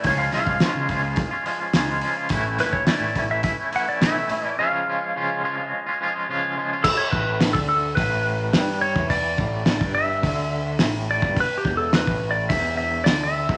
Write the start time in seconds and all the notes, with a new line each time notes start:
0.04 C#2 C#5, kick, open hi-hat
0.08 C#3 F3 G#3 C#4 F4
0.18 C#4 F4 F5
0.22 G#3
0.32 C2 F3 G#3 C#4 F4 F5, snare, open hi-hat
0.47 kick
0.60 C#3 F3 G#3 C#4 F4, snare, open hi-hat
0.75 C#3
0.89 C#2 F3 G#3 C#4 F4, kick, open hi-hat
1.04 G#3 C#4 F4
1.16 kick, open hi-hat
1.31 G#3 C#4 F4
1.46 F3 G#3 C#4 F4, open hi-hat
1.60 G#3 C#4 F4
1.73 C#2 C#3 F3 G#3 C#4 F4, snare, open hi-hat
2.01 F3 G#3 C#4 F4, open hi-hat
2.17 G#3 C#4 F4
2.29 A1 A2 E3 A3 C#4 E4, kick, open hi-hat
2.46 A3 C#4 E4
2.58 F#1 E3 A3 C#4 E4 B4, snare, open hi-hat
2.73 C#5, kick
2.86 A2 E3 A3 C#4 E4 D5, snare, open hi-hat
3.00 A2
3.15 A1 E3 A3 C#4 E4, kick, open hi-hat
3.30 A3 C#4 E4 E5
3.43 E5, kick, open hi-hat
3.59 A3 C#4 E4
3.72 E3 A3 C#4 E4 F#5, open hi-hat
3.88 A3 C#4 E4 D5
4.01 B1 A2 E3 A3 C#4 E4 E5, snare, open hi-hat
4.29 E3 A3 C#4 E4, open hi-hat
4.45 A3 C#4 E4 D5
4.58 C#3 F3 G#3 C#4 F4 F5
4.72 G#3 C#4 F4
4.87 F3 G#3 C#4 F4
5.16 C#3 F3 G#3 C#4 F4
5.43 F3 G#3 C#4 F4
5.58 G#3 C#4 F4
5.68 D#5
5.86 G#3 C#4 F4
6.01 F3 G#3 C#4 F4
6.16 G#3 C#4 F4
6.29 C#3 F3 G#3 C#4 F4
6.58 F3 G#3 C#4 F4
6.73 G#3 C#4 F4
6.84 A4, kick, crash
6.97 C#5
7.11 A1 A2 B4, kick
7.40 snare, open hi-hat
7.53 D2 D3 A4, kick
7.69 A4
7.95 A1 A2 B4, kick, open hi-hat
8.53 G2 G3, snare, open hi-hat
8.81 C#5
8.96 E2 E3, kick
9.10 D5, kick, open hi-hat
9.38 A1 A2, kick
9.66 snare, open hi-hat
9.80 G1 G2, kick
9.95 E5
10.23 D2 D3, kick, open hi-hat
10.79 A1 A2, snare, open hi-hat
11.11 D5
11.22 G1 G2, kick
11.36 B4, kick, open hi-hat
11.58 G4
11.65 E1 E2, kick
11.77 A4
11.93 B4, snare, open hi-hat
12.07 A1 A2, kick
12.31 D5
12.49 E1 E2 E5, kick, open hi-hat
12.77 E5
13.04 D2 D3 D5, snare, open hi-hat
13.23 E5
13.49 B1 B2, kick